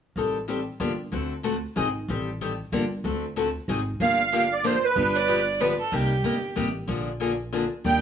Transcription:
0.16 0.67 A1 medium
0.16 0.37 D#3 soft
0.16 0.37 G3 medium
0.16 0.37 C4 medium
0.16 0.37 G4 soft
0.16 0.37 A4 medium
0.48 0.59 D#3 medium
0.48 0.59 G3 medium
0.48 0.60 C4 medium
0.48 0.59 G4 medium
0.48 0.60 A4 medium
0.80 1.06 G1 medium
0.80 0.91 D3 medium
0.80 0.91 F3 medium
0.80 0.91 A#3 medium
0.80 0.91 D4 medium
0.80 0.91 G4 medium
1.12 1.64 D2 medium
1.12 1.32 D3 medium
1.12 1.33 A3 medium
1.12 1.33 C4 medium
1.12 1.33 F#4 medium
1.12 1.33 A4 medium
1.43 1.55 D3 medium
1.43 1.55 A3 medium
1.43 1.55 C4 medium
1.43 1.55 F#4 medium
1.43 1.55 A4 medium
1.76 2.02 G#1 medium
1.76 1.87 D#3 medium
1.76 1.87 F#3 medium
1.76 1.88 C4 medium
1.76 1.88 D#4 medium
1.76 1.88 G#4 medium
2.08 2.60 A1 medium
2.08 2.29 D#3 medium
2.08 2.29 G3 medium
2.08 2.29 C4 medium
2.08 2.29 G4 medium
2.08 2.30 A4 medium
2.41 2.52 D#3 medium
2.41 2.52 G3 medium
2.41 2.52 C4 medium
2.41 2.52 G4 medium
2.41 2.52 A4 medium
2.72 2.98 G1 medium
2.72 2.84 D3 medium
2.72 2.84 F3 medium
2.72 2.84 A#3 medium
2.72 2.84 D4 medium
2.72 2.84 G4 medium
3.04 3.56 D2 medium
3.04 3.24 D3 medium
3.04 3.25 A3 medium
3.04 3.25 C4 medium
3.04 3.25 F#4 medium
3.04 3.25 A4 medium
3.36 3.47 D3 medium
3.36 3.48 A3 medium
3.36 3.48 C4 medium
3.36 3.48 F#4 medium
3.36 3.48 A4 medium
3.68 3.94 G#1 medium
3.68 3.80 D#3 medium
3.68 3.80 F#3 medium
3.68 3.80 C4 medium
3.68 3.80 D#4 medium
3.68 3.80 G#4 medium
4.00 4.77 G1 medium
4.00 4.20 D3 medium
4.00 4.21 F3 medium
4.00 4.21 A#3 medium
4.00 4.21 D4 medium
4.00 4.21 G4 medium
4.00 4.54 F5 medium
4.32 4.43 D3 medium
4.32 4.43 F3 medium
4.32 4.44 A#3 medium
4.32 4.44 D4 medium
4.32 4.44 G4 medium
4.53 4.66 D5 medium
4.64 4.75 D3 medium
4.64 4.75 F3 medium
4.64 4.75 A#3 medium
4.64 4.76 D4 medium
4.64 4.76 G4 medium
4.64 4.85 C5 medium
4.84 5.44 B4 medium
4.96 5.73 G1 medium
4.96 5.16 D3 medium
4.96 5.16 F3 medium
4.96 5.17 B3 medium
4.96 5.16 D4 medium
4.96 5.17 G4 medium
5.15 5.62 D5 medium
5.28 5.39 D3 medium
5.28 5.39 F3 medium
5.28 5.39 B3 medium
5.28 5.39 D4 medium
5.28 5.40 G4 medium
5.60 5.71 D3 medium
5.60 5.72 F3 medium
5.60 5.72 B3 medium
5.60 5.72 D4 medium
5.60 5.72 G4 medium
5.60 5.80 B4 medium
5.81 5.94 A4 medium
5.92 6.18 C2 medium
5.92 6.12 C3 medium
5.92 6.12 G3 medium
5.92 6.13 A#3 medium
5.92 6.13 D#4 medium
5.92 6.13 G4 medium
5.92 6.57 G4 medium
6.23 6.51 G1 medium
6.23 6.35 C3 medium
6.23 6.35 G3 medium
6.23 6.36 A#3 medium
6.23 6.36 D#4 medium
6.23 6.36 G4 medium
6.56 6.84 A1 medium
6.56 6.67 C3 medium
6.56 6.67 G3 medium
6.56 6.67 A#3 medium
6.56 6.68 D#4 medium
6.56 6.68 G4 medium
6.87 7.65 A#1 medium
6.87 7.08 D3 soft
6.87 7.08 F3 medium
6.87 7.08 A#3 medium
6.87 7.08 D4 medium
6.87 7.09 G#4 medium
7.20 7.31 D3 medium
7.20 7.31 F3 medium
7.20 7.32 A#3 medium
7.20 7.32 D4 medium
7.20 7.32 G#4 medium
7.53 7.63 D3 medium
7.53 7.63 F3 medium
7.53 7.64 A#3 medium
7.53 7.64 D4 medium
7.53 7.64 G#4 medium
7.84 8.01 D#2 medium
7.84 8.01 D#3 medium
7.84 8.01 G3 medium
7.84 8.01 A#3 medium
7.84 8.01 D4 medium
7.84 8.01 G4 medium
7.84 8.01 G5 medium

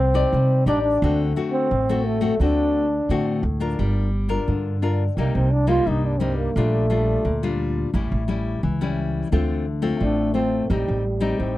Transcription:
0.00 0.23 C2 medium
0.00 0.30 C4 medium
0.00 0.63 C4 medium
0.14 0.61 D#4 medium
0.14 0.62 G4 medium
0.14 0.62 D5 medium
0.33 0.62 C3 medium
0.33 0.99 G3 medium
0.66 0.96 A1 medium
0.66 0.82 D4 medium
0.66 0.96 D#4 medium
0.66 0.96 G4 medium
0.66 0.97 D5 medium
0.82 1.23 D4 medium
1.02 1.31 D2 loud
1.02 1.68 D3 medium
1.02 1.32 A3 medium
1.02 1.32 C4 medium
1.02 1.32 F#4 medium
1.36 1.69 A3 soft
1.36 1.69 C4 medium
1.36 1.69 F#4 medium
1.52 2.07 C4 medium
1.71 2.30 A1 medium
1.71 2.37 A2 soft
1.89 2.18 A3 medium
1.89 2.18 C4 medium
1.89 2.19 F#4 medium
2.05 2.40 A3 medium
2.21 2.34 A3 medium
2.21 2.34 C4 medium
2.21 2.34 F#4 medium
2.40 2.99 D2 medium
2.40 3.06 D3 medium
2.40 2.85 A3 medium
2.40 2.85 C4 medium
2.40 3.41 D4 medium
2.40 2.85 F#4 medium
3.09 3.75 A2 medium
3.09 3.39 D3 medium
3.09 3.42 A3 medium
3.09 3.42 C4 medium
3.09 3.43 F#4 medium
3.43 3.73 D2 medium
3.60 4.07 D4 medium
3.60 4.07 F4 medium
3.60 4.08 A#4 medium
3.79 4.38 G1 medium
3.79 4.45 G3 medium
4.29 4.76 D4 medium
4.29 4.76 F4 medium
4.29 4.76 A#4 medium
4.48 5.07 G2 medium
4.48 5.13 D3 soft
4.82 5.03 D4 soft
4.82 5.03 F4 medium
4.82 5.03 A#4 medium
5.17 5.32 C2 medium
5.17 5.83 C3 soft
5.17 5.50 G3 soft
5.17 5.37 A#3 medium
5.17 5.50 A#3 soft
5.17 5.50 D#4 medium
5.35 5.79 C2 medium
5.35 5.53 C4 medium
5.52 5.70 D4 medium
5.67 6.14 G3 medium
5.67 6.14 A#3 medium
5.67 6.15 D#4 medium
5.67 5.90 F4 medium
5.87 6.45 C2 medium
5.87 6.52 G2 medium
5.87 6.07 D#4 medium
6.05 6.21 D4 medium
6.20 6.49 G3 medium
6.20 6.50 A#3 medium
6.20 6.38 C4 medium
6.20 6.50 D#4 medium
6.37 6.57 A#3 medium
6.56 7.14 A#1 medium
6.56 7.22 A#2 medium
6.56 6.85 G3 medium
6.56 7.59 A3 medium
6.56 6.85 D4 medium
6.56 6.86 F4 medium
6.90 7.22 G3 medium
6.90 7.23 D4 soft
6.90 7.23 F4 medium
7.25 7.84 D2 medium
7.25 7.90 A#2 medium
7.43 7.89 G3 medium
7.43 7.89 D4 medium
7.43 7.89 F4 medium
7.94 8.08 A1 medium
7.94 8.60 A2 medium
7.94 8.23 G3 soft
7.94 8.23 C#4 medium
7.94 8.23 E4 medium
8.12 8.56 A1 medium
8.28 8.61 G3 medium
8.28 8.61 C#4 medium
8.28 8.61 E4 medium
8.63 9.22 C#2 medium
8.63 9.29 E3 medium
8.81 9.27 G3 medium
8.81 9.27 C#4 medium
8.81 9.28 E4 medium
9.32 9.91 D2 medium
9.32 9.98 D3 medium
9.32 9.65 A3 medium
9.32 9.65 C4 medium
9.32 9.65 F4 medium
9.82 10.29 A3 medium
9.82 10.30 C4 medium
9.82 10.30 F4 medium
10.00 10.60 A1 medium
10.00 10.67 A2 soft
10.00 10.33 D4 medium
10.34 10.64 A3 soft
10.34 10.71 C4 medium
10.34 10.64 C4 medium
10.34 10.64 F4 medium
10.70 10.85 A1 medium
10.70 11.36 A2 medium
10.70 11.40 G3 medium
10.70 11.03 G3 medium
10.70 11.03 C4 medium
10.70 11.03 D#4 medium
10.88 11.32 A1 medium
11.21 11.58 G3 medium
11.21 11.58 C4 medium
11.21 11.58 D#4 medium
11.39 11.58 A1 medium
11.39 11.58 A2 medium
11.39 11.58 C4 medium

